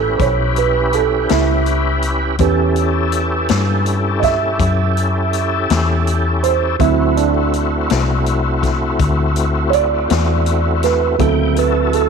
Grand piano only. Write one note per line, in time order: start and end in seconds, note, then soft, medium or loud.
0.00 2.36 G3 soft
0.00 2.37 B3 soft
0.00 2.37 C#4 soft
0.00 0.19 A4 medium
0.17 0.21 C5 soft
0.22 0.57 C#5 medium
0.58 0.93 B4 medium
0.94 1.29 A4 medium
1.31 2.02 E4 medium
2.40 6.76 C#4 soft
2.40 6.76 G4 soft
2.40 6.76 B4 soft
4.20 4.24 D#5 soft
4.24 6.40 E5 medium
6.43 6.79 C5 medium
6.79 7.28 F#3 soft
6.79 7.29 C4 soft
6.79 7.16 E4 medium
7.17 9.33 D4 medium
9.70 9.74 C#5 medium
9.74 10.81 D5 medium
10.84 11.19 B4 medium
11.18 12.09 F#3 soft
11.18 12.09 C4 soft
11.18 12.09 E4 soft
11.18 11.56 A4 medium
11.58 11.93 B4 medium
11.94 12.09 A4 medium